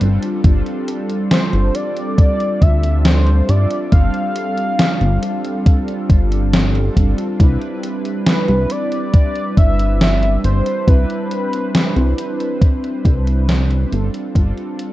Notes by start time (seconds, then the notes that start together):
0.00 G1 G3 C4 D4 F4 A4, closed hi-hat
0.22 closed hi-hat
0.43 G1 G3 C4 D4 F4 A4, kick, closed hi-hat
0.66 closed hi-hat
0.88 closed hi-hat
1.09 closed hi-hat
1.31 C5, snare, closed hi-hat
1.53 G1, closed hi-hat
1.75 D5, closed hi-hat
1.97 closed hi-hat
2.18 D5, kick, closed hi-hat
2.40 closed hi-hat
2.62 D2 E5, kick, closed hi-hat
2.83 closed hi-hat
3.05 C5, snare, closed hi-hat
3.27 closed hi-hat
3.48 G2 G3 C4 D4 F4 A4 D5, closed hi-hat
3.71 closed hi-hat
3.91 G1 G3 C4 D4 F4 A4 F5, kick, closed hi-hat
4.14 closed hi-hat
4.36 closed hi-hat
4.57 closed hi-hat
4.79 snare, closed hi-hat
5.01 G1, closed hi-hat
5.23 closed hi-hat
5.45 closed hi-hat
5.66 kick, closed hi-hat
5.88 closed hi-hat
6.09 G1, kick, closed hi-hat
6.32 closed hi-hat
6.53 snare, closed hi-hat
6.75 closed hi-hat
6.96 G1 G3 C4 D4 F4 A4, kick, closed hi-hat
7.18 closed hi-hat
7.39 C2 G3 C4 D4 E4 B4, kick, closed hi-hat
7.62 closed hi-hat
7.83 closed hi-hat
8.05 closed hi-hat
8.27 B4, snare, closed hi-hat
8.48 C2, closed hi-hat
8.70 D5, closed hi-hat
8.92 closed hi-hat
9.14 D5, kick, closed hi-hat
9.36 closed hi-hat
9.57 G1 E5, kick, closed hi-hat
9.79 closed hi-hat
10.01 E5, snare, closed hi-hat
10.23 closed hi-hat
10.44 G1 G3 C4 D4 E4 C5, closed hi-hat
10.66 closed hi-hat
10.87 C2 G3 C4 D4 E4 B4, kick, closed hi-hat
11.10 closed hi-hat
11.31 closed hi-hat
11.53 closed hi-hat
11.75 snare, closed hi-hat
11.96 C2, closed hi-hat
12.18 closed hi-hat
12.40 closed hi-hat
12.61 kick, closed hi-hat
12.84 closed hi-hat
13.05 C2, kick, closed hi-hat
13.27 closed hi-hat
13.49 snare, closed hi-hat
13.71 closed hi-hat
13.91 G1 G3 C4 D4 F4 A4, closed hi-hat
14.14 closed hi-hat
14.34 G1 G3 C4 D4 F4 A4, kick, closed hi-hat
14.58 closed hi-hat
14.79 closed hi-hat